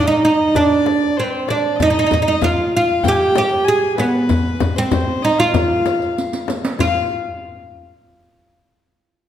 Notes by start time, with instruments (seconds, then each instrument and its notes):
Already playing: violin D#5
0.07 oud D#4
0.22 oud D#4, violin D#5
0.40 darbuka ka
0.54 oud D4, violin D5, frame drum, darbuka dum
0.86 darbuka tek, frame drum
1.17 oud C4, violin C5
1.23 violin B4
1.30 violin C5, darbuka ka
1.48 oud D4, violin D5, darbuka tek, frame drum
1.78 violin D#5, riq, darbuka dum, frame drum
1.82 oud D#4
1.90 oud D#4
1.99 oud D#4
2.07 oud D#4
2.11 oud D#4, riq, frame drum, darbuka dum
2.22 oud D#4
2.27 oud D#4, violin D#5, darbuka ka
2.41 oud F4, violin F5, riq, darbuka dum, frame drum
2.74 oud F4, violin F5
2.89 riq, darbuka ka
3.03 violin G5, riq, darbuka dum, frame drum
3.08 oud G4, violin G#5
3.17 violin G5
3.35 oud G4, riq, darbuka tek, frame drum
3.64 oud G#4, violin G#5
3.83 darbuka ka
3.97 oud B3, violin B4, riq, darbuka tek, frame drum
4.29 riq, frame drum, darbuka dum
4.60 riq, frame drum, darbuka dum
4.76 oud C4, violin C5, riq, darbuka ka
4.91 riq, darbuka dum, frame drum
5.07 darbuka ka
5.22 oud D#4, violin D#5
5.38 oud F4, violin F5, riq, darbuka ka
5.54 riq, darbuka dum, frame drum
5.85 riq, darbuka tek, frame drum
6.02 riq, darbuka ka
6.18 riq
6.32 riq, darbuka ka
6.48 riq, darbuka tek, frame drum
6.65 riq
6.79 oud F4, violin F5, riq, frame drum, darbuka dum